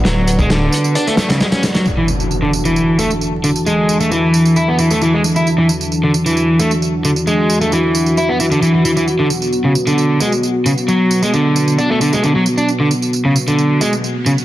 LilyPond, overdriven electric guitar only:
\new Staff \with { instrumentName = "Overdriven electric guitar" } { \clef bass \time 4/4 \key e \mixolydian \tempo 4 = 133 fis8. gis16 d4 d'16 a16 a16 cis16 gis16 cis'16 r16 fis16 | r16 e16 r8. d16 r16 e8. a16 r8. d16 r16 | gis8. a16 e4 e'16 b16 e16 a16 e16 gis16 r16 e'16 | r16 e16 r8. d16 r16 e8. a16 r8. d16 r16 |
gis8. a16 e4 e'16 b16 e16 d16 e16 e16 e16 e16 | r16 d16 r8. cis16 r16 d8. gis16 r8. cis16 r16 | fis8. gis16 d4 d'16 a16 d16 gis16 d16 fis16 r16 d'16 | r16 d16 r8. cis16 r16 d8. gis16 r8. cis16 r16 | }